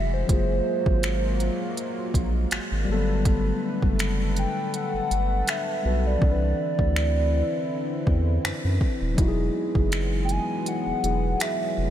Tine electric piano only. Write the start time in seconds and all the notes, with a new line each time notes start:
Already playing: F#3 E4 F#4 G#4
0.26 F#3 A#3
0.30 F4 G#4
2.85 G3 A#3
2.89 F#3 A4
2.94 B3
5.83 G3 B3 F#4 B4
6.18 E3 C4
6.23 D4 A4
6.32 B4
9.15 F#3 D#4
9.19 E4 F#4
9.28 G#4
11.02 F#3 E4 F#4 G#4